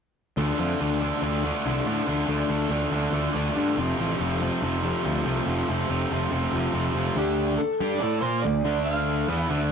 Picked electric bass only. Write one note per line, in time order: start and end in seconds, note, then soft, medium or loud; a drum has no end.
0.37 0.51 D2 medium
0.59 0.73 F2 medium
0.81 1.09 D2 medium
1.22 1.50 D2 medium
1.66 1.79 C2 medium
1.86 2.00 A2 medium
2.08 2.22 D2 medium
2.27 2.42 D2 medium
2.49 2.64 D2 medium
2.69 2.84 D2 medium
2.91 3.05 D2 medium
3.12 3.26 D2 medium
3.35 3.49 D2 medium
3.56 3.70 G2 medium
3.77 3.91 F1 medium
3.98 4.13 A1 medium
4.19 4.48 F1 medium
4.62 4.90 F1 medium
5.05 5.19 D2 medium
5.25 5.39 C2 medium
5.46 5.61 F1 medium
5.68 5.82 F1 medium
5.89 6.03 F1 medium
6.11 6.25 F1 medium
6.31 6.45 F1 medium
6.53 6.67 F1 medium
6.73 6.88 F1 medium
6.93 7.08 F1 medium
7.16 7.56 D2 medium
7.60 muted picked electric bass stroke soft
7.80 8.00 G2 medium
8.02 8.21 A2 medium
8.22 8.42 A#2 medium
8.44 8.63 D2 medium
8.65 9.24 D2 medium
9.28 9.48 E2 medium
9.50 9.69 D2 medium